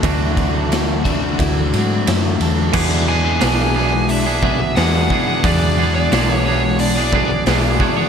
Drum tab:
CC |--------|x-------|--------|
RD |xxxxxxxx|--------|--------|
HH |--------|--o-o-o-|o-o-o-o-|
SD |--o---o-|--o---o-|--o---o-|
BD |oo-oo---|o----o-o|o----o-o|